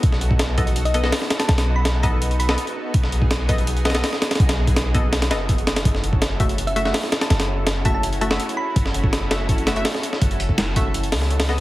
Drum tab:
HH |x---x---x---x-x-x-x-x---o---x-x-|x-x-----x---x---x-x-x---x-x-----|x---x---x---x-x-x-x-xxx-o---x-xx|x-x---x-x---x---x-x-x---x-x-x-x-|
SD |--o-----o-------------o-o-o-o-o-|o-o-----o-------------o---------|--o-----o-----------ooo-o-o-o-oo|--o-----o-------o-o-o-------o-o-|
BD |o-----o-----o-------------------|------------o-------------------|o-----o-----o-------------------|o-----o-----o-----------o-------|

HH |x---x---x---x-x-x-x-x---o---x-x-|x-x-----x---x---x-x-x---x-x-----|x---x---x---x---x-x-x-x-o---x---|x-x-x---x---x---x-x-o---x-o-----|
SD |--o-----o-------------o-o-o-o-o-|o-o-----o-------------o---------|--o-----o---o-------o---o-o---o-|--------o-----------o-o---o-o---|
BD |o-----o-----o-------------------|------------o-------------------|o-----o---------o---------------|o-----o-----o-------------------|